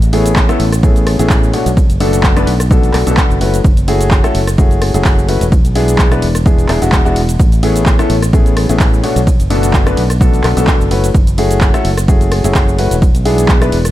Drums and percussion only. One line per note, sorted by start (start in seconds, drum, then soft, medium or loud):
0.02 closed hi-hat medium
0.02 shaker soft
0.13 open hi-hat loud
0.13 ride medium
0.26 closed hi-hat medium
0.26 shaker medium
0.36 kick loud
0.36 clap loud
0.36 ride medium
0.36 shaker medium
0.49 cross-stick medium
0.49 closed hi-hat medium
0.49 shaker soft
0.60 open hi-hat loud
0.60 ride medium
0.72 cross-stick medium
0.72 closed hi-hat medium
0.72 shaker medium
0.83 kick loud
0.83 ride medium
0.83 shaker medium
0.96 closed hi-hat soft
0.96 shaker soft
1.07 cross-stick medium
1.07 open hi-hat loud
1.07 ride medium
1.19 closed hi-hat medium
1.19 shaker medium
1.30 kick loud
1.30 clap loud
1.30 open hi-hat medium
1.30 ride medium
1.30 shaker medium
1.44 shaker soft
1.54 open hi-hat loud
1.54 ride medium
1.66 closed hi-hat medium
1.66 shaker medium
1.77 kick loud
1.77 ride medium
1.77 shaker medium
1.90 closed hi-hat medium
1.90 shaker soft
2.00 open hi-hat loud
2.00 ride medium
2.13 closed hi-hat medium
2.13 shaker medium
2.23 kick loud
2.23 clap loud
2.23 ride medium
2.23 shaker medium
2.37 cross-stick medium
2.37 closed hi-hat medium
2.37 shaker soft
2.47 open hi-hat loud
2.47 ride medium
2.60 cross-stick medium
2.60 closed hi-hat medium
2.60 shaker medium
2.71 kick loud
2.71 ride medium
2.71 shaker medium
2.83 closed hi-hat soft
2.83 shaker soft
2.94 cross-stick medium
2.94 clap medium
2.94 open hi-hat loud
2.94 ride medium
3.07 closed hi-hat medium
3.07 shaker medium
3.17 kick loud
3.17 clap loud
3.17 ride medium
3.17 shaker medium
3.31 shaker soft
3.41 open hi-hat loud
3.41 ride medium
3.54 closed hi-hat medium
3.54 shaker medium
3.64 kick loud
3.64 ride medium
3.64 shaker medium
3.77 closed hi-hat medium
3.77 shaker soft
3.88 open hi-hat loud
3.88 ride medium
4.01 closed hi-hat medium
4.01 shaker medium
4.11 kick loud
4.11 clap loud
4.11 ride medium
4.11 shaker medium
4.24 cross-stick medium
4.24 closed hi-hat medium
4.24 shaker soft
4.35 open hi-hat loud
4.35 ride medium
4.47 cross-stick medium
4.47 closed hi-hat medium
4.47 shaker medium
4.58 kick loud
4.58 ride medium
4.58 shaker medium
4.71 closed hi-hat soft
4.71 shaker soft
4.82 cross-stick medium
4.82 open hi-hat loud
4.82 ride medium
4.94 closed hi-hat medium
4.94 shaker medium
5.05 kick loud
5.05 clap loud
5.05 open hi-hat medium
5.05 ride medium
5.05 shaker medium
5.19 shaker soft
5.29 open hi-hat loud
5.29 ride medium
5.41 closed hi-hat medium
5.41 shaker medium
5.52 kick loud
5.52 ride medium
5.52 shaker medium
5.65 closed hi-hat medium
5.65 shaker soft
5.75 open hi-hat loud
5.75 ride medium
5.88 closed hi-hat medium
5.88 shaker medium
5.98 kick loud
5.98 clap loud
5.98 ride medium
5.98 shaker medium
6.12 cross-stick medium
6.12 closed hi-hat soft
6.12 shaker soft
6.22 open hi-hat loud
6.22 ride medium
6.35 cross-stick medium
6.35 closed hi-hat medium
6.35 shaker medium
6.46 kick loud
6.46 ride medium
6.46 shaker medium
6.58 closed hi-hat soft
6.58 shaker soft
6.69 cross-stick medium
6.69 clap medium
6.69 open hi-hat loud
6.69 ride medium
6.82 closed hi-hat medium
6.82 shaker medium
6.92 kick loud
6.92 clap loud
6.92 ride medium
6.92 shaker medium
7.06 shaker soft
7.16 open hi-hat loud
7.16 ride medium
7.29 closed hi-hat medium
7.29 shaker medium
7.39 kick loud
7.39 ride medium
7.39 shaker medium
7.52 closed hi-hat medium
7.52 shaker soft
7.63 open hi-hat loud
7.63 ride medium
7.76 closed hi-hat medium
7.76 shaker medium
7.86 kick loud
7.86 clap loud
7.86 ride medium
7.86 shaker medium
7.99 cross-stick medium
7.99 closed hi-hat medium
7.99 shaker soft
8.10 open hi-hat loud
8.10 ride medium
8.22 cross-stick medium
8.22 closed hi-hat medium
8.22 shaker medium
8.33 kick loud
8.33 ride medium
8.33 shaker medium
8.46 closed hi-hat soft
8.46 shaker soft
8.57 cross-stick medium
8.57 open hi-hat loud
8.57 ride medium
8.69 closed hi-hat medium
8.69 shaker medium
8.80 kick loud
8.80 clap loud
8.80 open hi-hat medium
8.80 ride medium
8.80 shaker medium
8.94 shaker soft
9.04 open hi-hat loud
9.04 ride medium
9.16 closed hi-hat medium
9.16 shaker medium
9.27 kick loud
9.27 ride medium
9.27 shaker medium
9.40 closed hi-hat medium
9.40 shaker soft
9.50 open hi-hat loud
9.50 ride medium
9.63 closed hi-hat medium
9.63 shaker medium
9.73 kick loud
9.73 clap loud
9.73 ride medium
9.73 shaker medium
9.87 cross-stick medium
9.87 closed hi-hat medium
9.87 shaker soft
9.97 open hi-hat loud
9.97 ride medium
10.10 cross-stick medium
10.10 closed hi-hat medium
10.10 shaker medium
10.21 kick loud
10.21 ride medium
10.21 shaker medium
10.33 closed hi-hat soft
10.33 shaker soft
10.44 cross-stick medium
10.44 clap medium
10.44 open hi-hat loud
10.44 ride medium
10.57 closed hi-hat medium
10.57 shaker medium
10.67 kick loud
10.67 clap loud
10.67 ride medium
10.67 shaker medium
10.81 shaker soft
10.91 open hi-hat loud
10.91 ride medium
11.04 closed hi-hat medium
11.04 shaker medium
11.14 kick loud
11.14 ride medium
11.14 shaker medium
11.27 closed hi-hat medium
11.27 shaker soft
11.38 open hi-hat loud
11.38 ride medium
11.51 closed hi-hat medium
11.51 shaker medium
11.61 kick loud
11.61 clap loud
11.61 ride medium
11.61 shaker medium
11.74 cross-stick medium
11.74 closed hi-hat medium
11.74 shaker soft
11.85 open hi-hat loud
11.85 ride medium
11.97 cross-stick medium
11.97 closed hi-hat medium
11.97 shaker medium
12.08 kick loud
12.08 ride medium
12.08 shaker medium
12.21 closed hi-hat soft
12.21 shaker soft
12.32 cross-stick medium
12.32 open hi-hat loud
12.32 ride medium
12.44 closed hi-hat medium
12.44 shaker medium
12.55 kick loud
12.55 clap loud
12.55 open hi-hat medium
12.55 ride medium
12.55 shaker medium
12.68 shaker soft
12.79 open hi-hat loud
12.79 ride medium
12.91 closed hi-hat medium
12.91 shaker medium
13.02 kick loud
13.02 ride medium
13.02 shaker medium
13.15 closed hi-hat medium
13.15 shaker soft
13.25 open hi-hat loud
13.25 ride medium
13.38 closed hi-hat medium
13.38 shaker medium
13.48 kick loud
13.48 clap loud
13.48 ride medium
13.48 shaker medium
13.62 cross-stick medium
13.62 closed hi-hat medium
13.62 shaker soft
13.72 open hi-hat loud
13.72 ride medium
13.85 cross-stick medium
13.85 closed hi-hat medium
13.85 shaker medium